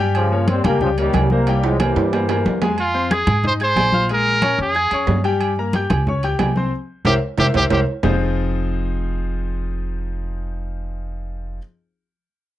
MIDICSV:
0, 0, Header, 1, 6, 480
1, 0, Start_track
1, 0, Key_signature, -4, "minor"
1, 0, Tempo, 328767
1, 222, Time_signature, 4, 2, 24, 8
1, 18374, End_track
2, 0, Start_track
2, 0, Title_t, "Grand piano"
2, 0, Program_c, 0, 0
2, 0, Note_on_c, 0, 55, 92
2, 0, Note_on_c, 0, 67, 100
2, 0, Note_on_c, 0, 79, 94
2, 372, Note_off_c, 0, 55, 0
2, 377, Note_off_c, 0, 67, 0
2, 380, Note_off_c, 0, 79, 0
2, 467, Note_on_c, 0, 58, 85
2, 467, Note_on_c, 0, 70, 81
2, 473, Note_on_c, 0, 73, 85
2, 859, Note_off_c, 0, 58, 0
2, 859, Note_off_c, 0, 70, 0
2, 862, Note_off_c, 0, 73, 0
2, 946, Note_on_c, 0, 55, 81
2, 954, Note_on_c, 0, 67, 87
2, 955, Note_on_c, 0, 79, 90
2, 1141, Note_off_c, 0, 55, 0
2, 1146, Note_off_c, 0, 67, 0
2, 1147, Note_off_c, 0, 79, 0
2, 1183, Note_on_c, 0, 55, 81
2, 1186, Note_on_c, 0, 67, 89
2, 1196, Note_on_c, 0, 79, 86
2, 1380, Note_off_c, 0, 55, 0
2, 1381, Note_off_c, 0, 67, 0
2, 1387, Note_off_c, 0, 79, 0
2, 1432, Note_on_c, 0, 58, 81
2, 1438, Note_on_c, 0, 70, 78
2, 1439, Note_on_c, 0, 73, 79
2, 1822, Note_off_c, 0, 58, 0
2, 1825, Note_off_c, 0, 70, 0
2, 1826, Note_off_c, 0, 73, 0
2, 1918, Note_on_c, 0, 58, 78
2, 1924, Note_on_c, 0, 70, 74
2, 1933, Note_on_c, 0, 72, 83
2, 2108, Note_off_c, 0, 58, 0
2, 2112, Note_off_c, 0, 70, 0
2, 2117, Note_off_c, 0, 72, 0
2, 2162, Note_on_c, 0, 55, 93
2, 2169, Note_on_c, 0, 67, 88
2, 2176, Note_on_c, 0, 79, 88
2, 2548, Note_off_c, 0, 55, 0
2, 2552, Note_off_c, 0, 67, 0
2, 2556, Note_off_c, 0, 79, 0
2, 2635, Note_on_c, 0, 58, 86
2, 2642, Note_on_c, 0, 70, 75
2, 2649, Note_on_c, 0, 72, 79
2, 3024, Note_off_c, 0, 58, 0
2, 3027, Note_off_c, 0, 70, 0
2, 3032, Note_off_c, 0, 72, 0
2, 3113, Note_on_c, 0, 58, 70
2, 3119, Note_on_c, 0, 70, 67
2, 3124, Note_on_c, 0, 72, 80
2, 3305, Note_off_c, 0, 58, 0
2, 3309, Note_off_c, 0, 70, 0
2, 3312, Note_off_c, 0, 72, 0
2, 3364, Note_on_c, 0, 58, 81
2, 3364, Note_on_c, 0, 70, 78
2, 3373, Note_on_c, 0, 72, 79
2, 3749, Note_off_c, 0, 58, 0
2, 3749, Note_off_c, 0, 70, 0
2, 3754, Note_off_c, 0, 72, 0
2, 3830, Note_on_c, 0, 56, 85
2, 3840, Note_on_c, 0, 68, 82
2, 3840, Note_on_c, 0, 80, 88
2, 4024, Note_off_c, 0, 56, 0
2, 4029, Note_off_c, 0, 68, 0
2, 4029, Note_off_c, 0, 80, 0
2, 4298, Note_on_c, 0, 60, 82
2, 4302, Note_on_c, 0, 72, 77
2, 4306, Note_on_c, 0, 84, 87
2, 4496, Note_off_c, 0, 60, 0
2, 4498, Note_off_c, 0, 72, 0
2, 4501, Note_off_c, 0, 84, 0
2, 4535, Note_on_c, 0, 68, 78
2, 4541, Note_on_c, 0, 80, 79
2, 4545, Note_on_c, 0, 92, 85
2, 4931, Note_off_c, 0, 68, 0
2, 4934, Note_off_c, 0, 80, 0
2, 4937, Note_off_c, 0, 92, 0
2, 5023, Note_on_c, 0, 63, 74
2, 5027, Note_on_c, 0, 75, 76
2, 5030, Note_on_c, 0, 87, 73
2, 5219, Note_off_c, 0, 63, 0
2, 5222, Note_off_c, 0, 75, 0
2, 5223, Note_off_c, 0, 87, 0
2, 5268, Note_on_c, 0, 68, 78
2, 5272, Note_on_c, 0, 80, 71
2, 5276, Note_on_c, 0, 92, 75
2, 5659, Note_off_c, 0, 68, 0
2, 5661, Note_off_c, 0, 80, 0
2, 5663, Note_off_c, 0, 92, 0
2, 5741, Note_on_c, 0, 77, 81
2, 5743, Note_on_c, 0, 65, 75
2, 5753, Note_on_c, 0, 89, 76
2, 5938, Note_off_c, 0, 77, 0
2, 5939, Note_off_c, 0, 65, 0
2, 5945, Note_off_c, 0, 89, 0
2, 5992, Note_on_c, 0, 56, 87
2, 5992, Note_on_c, 0, 68, 86
2, 5995, Note_on_c, 0, 80, 90
2, 6380, Note_off_c, 0, 56, 0
2, 6381, Note_off_c, 0, 68, 0
2, 6382, Note_off_c, 0, 80, 0
2, 6454, Note_on_c, 0, 61, 83
2, 6456, Note_on_c, 0, 73, 75
2, 6458, Note_on_c, 0, 85, 84
2, 6850, Note_off_c, 0, 61, 0
2, 6851, Note_off_c, 0, 73, 0
2, 6852, Note_off_c, 0, 85, 0
2, 6939, Note_on_c, 0, 68, 70
2, 6948, Note_on_c, 0, 80, 77
2, 6948, Note_on_c, 0, 92, 76
2, 7136, Note_off_c, 0, 68, 0
2, 7141, Note_off_c, 0, 92, 0
2, 7142, Note_off_c, 0, 80, 0
2, 7192, Note_on_c, 0, 61, 75
2, 7201, Note_on_c, 0, 73, 76
2, 7206, Note_on_c, 0, 85, 82
2, 7580, Note_off_c, 0, 61, 0
2, 7586, Note_off_c, 0, 73, 0
2, 7588, Note_off_c, 0, 85, 0
2, 7650, Note_on_c, 0, 55, 89
2, 7656, Note_on_c, 0, 67, 96
2, 7666, Note_on_c, 0, 79, 92
2, 8047, Note_off_c, 0, 55, 0
2, 8051, Note_off_c, 0, 67, 0
2, 8057, Note_off_c, 0, 79, 0
2, 8160, Note_on_c, 0, 82, 85
2, 8162, Note_on_c, 0, 58, 77
2, 8162, Note_on_c, 0, 70, 83
2, 8348, Note_off_c, 0, 82, 0
2, 8349, Note_off_c, 0, 58, 0
2, 8350, Note_off_c, 0, 70, 0
2, 8398, Note_on_c, 0, 79, 78
2, 8399, Note_on_c, 0, 67, 77
2, 8404, Note_on_c, 0, 91, 79
2, 8784, Note_off_c, 0, 67, 0
2, 8784, Note_off_c, 0, 79, 0
2, 8788, Note_off_c, 0, 91, 0
2, 8874, Note_on_c, 0, 61, 70
2, 8879, Note_on_c, 0, 73, 80
2, 8884, Note_on_c, 0, 85, 76
2, 9065, Note_off_c, 0, 61, 0
2, 9068, Note_off_c, 0, 73, 0
2, 9071, Note_off_c, 0, 85, 0
2, 9108, Note_on_c, 0, 67, 83
2, 9114, Note_on_c, 0, 79, 79
2, 9119, Note_on_c, 0, 91, 80
2, 9498, Note_off_c, 0, 67, 0
2, 9501, Note_off_c, 0, 79, 0
2, 9505, Note_off_c, 0, 91, 0
2, 9589, Note_on_c, 0, 60, 83
2, 9594, Note_on_c, 0, 72, 84
2, 9597, Note_on_c, 0, 84, 82
2, 9782, Note_off_c, 0, 60, 0
2, 9785, Note_off_c, 0, 72, 0
2, 9787, Note_off_c, 0, 84, 0
2, 10299, Note_on_c, 0, 72, 102
2, 10300, Note_on_c, 0, 70, 108
2, 10306, Note_on_c, 0, 76, 107
2, 10453, Note_off_c, 0, 70, 0
2, 10453, Note_off_c, 0, 72, 0
2, 10457, Note_off_c, 0, 76, 0
2, 10786, Note_on_c, 0, 76, 102
2, 10789, Note_on_c, 0, 70, 91
2, 10789, Note_on_c, 0, 72, 99
2, 10937, Note_off_c, 0, 76, 0
2, 10939, Note_off_c, 0, 70, 0
2, 10939, Note_off_c, 0, 72, 0
2, 11028, Note_on_c, 0, 70, 92
2, 11029, Note_on_c, 0, 72, 94
2, 11030, Note_on_c, 0, 76, 94
2, 11178, Note_off_c, 0, 70, 0
2, 11179, Note_off_c, 0, 72, 0
2, 11180, Note_off_c, 0, 76, 0
2, 11247, Note_on_c, 0, 76, 93
2, 11249, Note_on_c, 0, 72, 100
2, 11250, Note_on_c, 0, 70, 98
2, 11406, Note_off_c, 0, 76, 0
2, 11407, Note_off_c, 0, 70, 0
2, 11407, Note_off_c, 0, 72, 0
2, 11724, Note_on_c, 0, 60, 84
2, 11727, Note_on_c, 0, 63, 92
2, 11729, Note_on_c, 0, 53, 94
2, 11731, Note_on_c, 0, 65, 89
2, 11736, Note_on_c, 0, 68, 84
2, 11737, Note_on_c, 0, 72, 104
2, 16894, Note_off_c, 0, 60, 0
2, 16897, Note_off_c, 0, 63, 0
2, 16900, Note_off_c, 0, 53, 0
2, 16902, Note_off_c, 0, 65, 0
2, 16907, Note_off_c, 0, 68, 0
2, 16907, Note_off_c, 0, 72, 0
2, 18374, End_track
3, 0, Start_track
3, 0, Title_t, "Trumpet"
3, 0, Program_c, 1, 56
3, 4093, Note_on_c, 1, 65, 106
3, 4574, Note_on_c, 1, 68, 102
3, 4595, Note_off_c, 1, 65, 0
3, 5037, Note_off_c, 1, 68, 0
3, 5071, Note_on_c, 1, 72, 115
3, 5168, Note_off_c, 1, 72, 0
3, 5314, Note_on_c, 1, 72, 120
3, 5959, Note_off_c, 1, 72, 0
3, 6040, Note_on_c, 1, 70, 119
3, 6681, Note_off_c, 1, 70, 0
3, 6745, Note_on_c, 1, 68, 105
3, 7624, Note_off_c, 1, 68, 0
3, 10317, Note_on_c, 1, 67, 103
3, 10427, Note_off_c, 1, 67, 0
3, 10799, Note_on_c, 1, 67, 105
3, 10908, Note_off_c, 1, 67, 0
3, 11050, Note_on_c, 1, 67, 106
3, 11156, Note_off_c, 1, 67, 0
3, 11287, Note_on_c, 1, 67, 84
3, 11394, Note_off_c, 1, 67, 0
3, 18374, End_track
4, 0, Start_track
4, 0, Title_t, "Trombone section"
4, 0, Program_c, 2, 61
4, 245, Note_on_c, 2, 53, 105
4, 255, Note_on_c, 2, 49, 81
4, 681, Note_off_c, 2, 53, 0
4, 686, Note_off_c, 2, 49, 0
4, 728, Note_on_c, 2, 60, 107
4, 742, Note_on_c, 2, 55, 89
4, 940, Note_off_c, 2, 60, 0
4, 947, Note_off_c, 2, 55, 0
4, 957, Note_on_c, 2, 58, 109
4, 970, Note_on_c, 2, 55, 81
4, 1173, Note_off_c, 2, 58, 0
4, 1180, Note_off_c, 2, 55, 0
4, 1214, Note_on_c, 2, 53, 93
4, 1221, Note_on_c, 2, 49, 80
4, 1315, Note_off_c, 2, 53, 0
4, 1320, Note_off_c, 2, 49, 0
4, 1454, Note_on_c, 2, 55, 114
4, 1461, Note_on_c, 2, 51, 86
4, 1886, Note_off_c, 2, 55, 0
4, 1890, Note_off_c, 2, 51, 0
4, 1915, Note_on_c, 2, 58, 91
4, 1924, Note_on_c, 2, 55, 79
4, 2355, Note_off_c, 2, 58, 0
4, 2361, Note_off_c, 2, 55, 0
4, 2415, Note_on_c, 2, 53, 74
4, 2416, Note_on_c, 2, 56, 92
4, 2639, Note_off_c, 2, 53, 0
4, 2639, Note_off_c, 2, 56, 0
4, 2651, Note_on_c, 2, 55, 89
4, 2653, Note_on_c, 2, 52, 72
4, 3778, Note_off_c, 2, 55, 0
4, 3779, Note_off_c, 2, 52, 0
4, 18374, End_track
5, 0, Start_track
5, 0, Title_t, "Upright bass"
5, 0, Program_c, 3, 32
5, 0, Note_on_c, 3, 43, 94
5, 858, Note_off_c, 3, 43, 0
5, 943, Note_on_c, 3, 37, 98
5, 1612, Note_off_c, 3, 37, 0
5, 1662, Note_on_c, 3, 36, 99
5, 2780, Note_off_c, 3, 36, 0
5, 2861, Note_on_c, 3, 43, 100
5, 3531, Note_off_c, 3, 43, 0
5, 3586, Note_on_c, 3, 41, 88
5, 4701, Note_off_c, 3, 41, 0
5, 4773, Note_on_c, 3, 44, 91
5, 5446, Note_off_c, 3, 44, 0
5, 5489, Note_on_c, 3, 34, 96
5, 6612, Note_off_c, 3, 34, 0
5, 6693, Note_on_c, 3, 41, 96
5, 7142, Note_off_c, 3, 41, 0
5, 7173, Note_on_c, 3, 41, 69
5, 7399, Note_off_c, 3, 41, 0
5, 7412, Note_on_c, 3, 43, 95
5, 8533, Note_off_c, 3, 43, 0
5, 8617, Note_on_c, 3, 37, 99
5, 9288, Note_off_c, 3, 37, 0
5, 9334, Note_on_c, 3, 36, 96
5, 9783, Note_off_c, 3, 36, 0
5, 10288, Note_on_c, 3, 36, 100
5, 10472, Note_off_c, 3, 36, 0
5, 10781, Note_on_c, 3, 36, 104
5, 10959, Note_off_c, 3, 36, 0
5, 11018, Note_on_c, 3, 36, 91
5, 11198, Note_off_c, 3, 36, 0
5, 11253, Note_on_c, 3, 36, 96
5, 11435, Note_off_c, 3, 36, 0
5, 11727, Note_on_c, 3, 29, 97
5, 16897, Note_off_c, 3, 29, 0
5, 18374, End_track
6, 0, Start_track
6, 0, Title_t, "Drums"
6, 217, Note_on_c, 9, 68, 104
6, 219, Note_on_c, 9, 63, 38
6, 363, Note_off_c, 9, 68, 0
6, 365, Note_off_c, 9, 63, 0
6, 457, Note_on_c, 9, 63, 37
6, 603, Note_off_c, 9, 63, 0
6, 696, Note_on_c, 9, 63, 101
6, 697, Note_on_c, 9, 66, 65
6, 697, Note_on_c, 9, 68, 66
6, 842, Note_off_c, 9, 63, 0
6, 843, Note_off_c, 9, 66, 0
6, 843, Note_off_c, 9, 68, 0
6, 937, Note_on_c, 9, 68, 108
6, 943, Note_on_c, 9, 63, 110
6, 943, Note_on_c, 9, 64, 92
6, 1083, Note_off_c, 9, 68, 0
6, 1089, Note_off_c, 9, 63, 0
6, 1089, Note_off_c, 9, 64, 0
6, 1179, Note_on_c, 9, 63, 38
6, 1179, Note_on_c, 9, 64, 81
6, 1325, Note_off_c, 9, 63, 0
6, 1325, Note_off_c, 9, 64, 0
6, 1420, Note_on_c, 9, 63, 38
6, 1427, Note_on_c, 9, 68, 77
6, 1566, Note_off_c, 9, 63, 0
6, 1573, Note_off_c, 9, 68, 0
6, 1655, Note_on_c, 9, 63, 94
6, 1663, Note_on_c, 9, 66, 94
6, 1663, Note_on_c, 9, 68, 112
6, 1801, Note_off_c, 9, 63, 0
6, 1809, Note_off_c, 9, 66, 0
6, 1809, Note_off_c, 9, 68, 0
6, 1898, Note_on_c, 9, 63, 83
6, 2044, Note_off_c, 9, 63, 0
6, 2145, Note_on_c, 9, 65, 78
6, 2145, Note_on_c, 9, 68, 73
6, 2291, Note_off_c, 9, 65, 0
6, 2291, Note_off_c, 9, 68, 0
6, 2387, Note_on_c, 9, 63, 37
6, 2388, Note_on_c, 9, 65, 104
6, 2533, Note_off_c, 9, 63, 0
6, 2534, Note_off_c, 9, 65, 0
6, 2624, Note_on_c, 9, 66, 84
6, 2624, Note_on_c, 9, 68, 115
6, 2626, Note_on_c, 9, 63, 101
6, 2770, Note_off_c, 9, 66, 0
6, 2770, Note_off_c, 9, 68, 0
6, 2772, Note_off_c, 9, 63, 0
6, 2866, Note_on_c, 9, 65, 105
6, 3012, Note_off_c, 9, 65, 0
6, 3106, Note_on_c, 9, 63, 36
6, 3108, Note_on_c, 9, 66, 95
6, 3108, Note_on_c, 9, 68, 85
6, 3252, Note_off_c, 9, 63, 0
6, 3254, Note_off_c, 9, 66, 0
6, 3254, Note_off_c, 9, 68, 0
6, 3342, Note_on_c, 9, 66, 103
6, 3342, Note_on_c, 9, 68, 107
6, 3346, Note_on_c, 9, 63, 35
6, 3488, Note_off_c, 9, 66, 0
6, 3488, Note_off_c, 9, 68, 0
6, 3492, Note_off_c, 9, 63, 0
6, 3585, Note_on_c, 9, 63, 86
6, 3589, Note_on_c, 9, 66, 92
6, 3731, Note_off_c, 9, 63, 0
6, 3735, Note_off_c, 9, 66, 0
6, 3820, Note_on_c, 9, 66, 91
6, 3820, Note_on_c, 9, 68, 93
6, 3825, Note_on_c, 9, 63, 69
6, 3966, Note_off_c, 9, 66, 0
6, 3966, Note_off_c, 9, 68, 0
6, 3971, Note_off_c, 9, 63, 0
6, 4056, Note_on_c, 9, 68, 103
6, 4065, Note_on_c, 9, 63, 36
6, 4202, Note_off_c, 9, 68, 0
6, 4211, Note_off_c, 9, 63, 0
6, 4305, Note_on_c, 9, 63, 37
6, 4451, Note_off_c, 9, 63, 0
6, 4537, Note_on_c, 9, 66, 64
6, 4537, Note_on_c, 9, 68, 68
6, 4540, Note_on_c, 9, 63, 103
6, 4683, Note_off_c, 9, 66, 0
6, 4683, Note_off_c, 9, 68, 0
6, 4686, Note_off_c, 9, 63, 0
6, 4772, Note_on_c, 9, 68, 113
6, 4776, Note_on_c, 9, 63, 106
6, 4776, Note_on_c, 9, 64, 85
6, 4918, Note_off_c, 9, 68, 0
6, 4922, Note_off_c, 9, 63, 0
6, 4922, Note_off_c, 9, 64, 0
6, 5018, Note_on_c, 9, 63, 37
6, 5018, Note_on_c, 9, 64, 83
6, 5164, Note_off_c, 9, 63, 0
6, 5164, Note_off_c, 9, 64, 0
6, 5256, Note_on_c, 9, 68, 70
6, 5261, Note_on_c, 9, 63, 36
6, 5402, Note_off_c, 9, 68, 0
6, 5407, Note_off_c, 9, 63, 0
6, 5492, Note_on_c, 9, 63, 92
6, 5499, Note_on_c, 9, 66, 93
6, 5499, Note_on_c, 9, 68, 119
6, 5638, Note_off_c, 9, 63, 0
6, 5645, Note_off_c, 9, 66, 0
6, 5645, Note_off_c, 9, 68, 0
6, 5730, Note_on_c, 9, 63, 86
6, 5876, Note_off_c, 9, 63, 0
6, 5973, Note_on_c, 9, 63, 35
6, 5976, Note_on_c, 9, 68, 72
6, 6119, Note_off_c, 9, 63, 0
6, 6122, Note_off_c, 9, 68, 0
6, 6218, Note_on_c, 9, 63, 36
6, 6364, Note_off_c, 9, 63, 0
6, 6452, Note_on_c, 9, 63, 104
6, 6453, Note_on_c, 9, 66, 57
6, 6453, Note_on_c, 9, 68, 115
6, 6598, Note_off_c, 9, 63, 0
6, 6599, Note_off_c, 9, 66, 0
6, 6599, Note_off_c, 9, 68, 0
6, 6930, Note_on_c, 9, 68, 85
6, 6940, Note_on_c, 9, 63, 37
6, 7076, Note_off_c, 9, 68, 0
6, 7086, Note_off_c, 9, 63, 0
6, 7169, Note_on_c, 9, 68, 110
6, 7173, Note_on_c, 9, 63, 34
6, 7315, Note_off_c, 9, 68, 0
6, 7319, Note_off_c, 9, 63, 0
6, 7404, Note_on_c, 9, 66, 98
6, 7417, Note_on_c, 9, 63, 95
6, 7550, Note_off_c, 9, 66, 0
6, 7563, Note_off_c, 9, 63, 0
6, 7653, Note_on_c, 9, 68, 94
6, 7799, Note_off_c, 9, 68, 0
6, 7892, Note_on_c, 9, 68, 98
6, 7900, Note_on_c, 9, 63, 38
6, 8038, Note_off_c, 9, 68, 0
6, 8046, Note_off_c, 9, 63, 0
6, 8134, Note_on_c, 9, 63, 36
6, 8280, Note_off_c, 9, 63, 0
6, 8369, Note_on_c, 9, 63, 94
6, 8377, Note_on_c, 9, 66, 61
6, 8377, Note_on_c, 9, 68, 76
6, 8515, Note_off_c, 9, 63, 0
6, 8523, Note_off_c, 9, 66, 0
6, 8523, Note_off_c, 9, 68, 0
6, 8612, Note_on_c, 9, 68, 105
6, 8619, Note_on_c, 9, 63, 104
6, 8619, Note_on_c, 9, 64, 90
6, 8758, Note_off_c, 9, 68, 0
6, 8765, Note_off_c, 9, 63, 0
6, 8765, Note_off_c, 9, 64, 0
6, 8861, Note_on_c, 9, 63, 37
6, 8861, Note_on_c, 9, 64, 82
6, 9007, Note_off_c, 9, 63, 0
6, 9007, Note_off_c, 9, 64, 0
6, 9096, Note_on_c, 9, 68, 69
6, 9102, Note_on_c, 9, 63, 37
6, 9242, Note_off_c, 9, 68, 0
6, 9248, Note_off_c, 9, 63, 0
6, 9329, Note_on_c, 9, 66, 94
6, 9329, Note_on_c, 9, 68, 114
6, 9339, Note_on_c, 9, 63, 86
6, 9475, Note_off_c, 9, 66, 0
6, 9475, Note_off_c, 9, 68, 0
6, 9485, Note_off_c, 9, 63, 0
6, 9574, Note_on_c, 9, 63, 81
6, 9720, Note_off_c, 9, 63, 0
6, 10294, Note_on_c, 9, 65, 104
6, 10303, Note_on_c, 9, 64, 102
6, 10440, Note_off_c, 9, 65, 0
6, 10449, Note_off_c, 9, 64, 0
6, 10768, Note_on_c, 9, 65, 96
6, 10778, Note_on_c, 9, 64, 107
6, 10914, Note_off_c, 9, 65, 0
6, 10924, Note_off_c, 9, 64, 0
6, 11009, Note_on_c, 9, 65, 106
6, 11022, Note_on_c, 9, 64, 98
6, 11155, Note_off_c, 9, 65, 0
6, 11168, Note_off_c, 9, 64, 0
6, 11247, Note_on_c, 9, 65, 108
6, 11251, Note_on_c, 9, 64, 110
6, 11393, Note_off_c, 9, 65, 0
6, 11397, Note_off_c, 9, 64, 0
6, 11725, Note_on_c, 9, 66, 100
6, 11730, Note_on_c, 9, 64, 100
6, 11871, Note_off_c, 9, 66, 0
6, 11876, Note_off_c, 9, 64, 0
6, 18374, End_track
0, 0, End_of_file